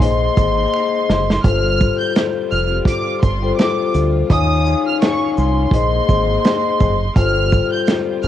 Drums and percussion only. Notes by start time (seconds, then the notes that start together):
0.00 kick, closed hi-hat
0.37 kick, closed hi-hat, shaker
0.73 finger snap
1.09 snare
1.30 snare
1.44 kick, closed hi-hat
1.80 kick, shaker
2.16 finger snap, snare, closed hi-hat
2.51 shaker
2.85 kick, closed hi-hat
3.23 kick, closed hi-hat, shaker
3.59 finger snap, snare, closed hi-hat
3.94 closed hi-hat, shaker
4.30 kick, closed hi-hat
4.66 shaker
5.02 finger snap, snare, closed hi-hat
5.37 shaker
5.71 kick, closed hi-hat
6.08 kick, shaker
6.44 finger snap, snare, closed hi-hat
6.80 kick, shaker
7.16 kick, closed hi-hat
7.52 kick, shaker
7.87 finger snap, snare, closed hi-hat
8.23 shaker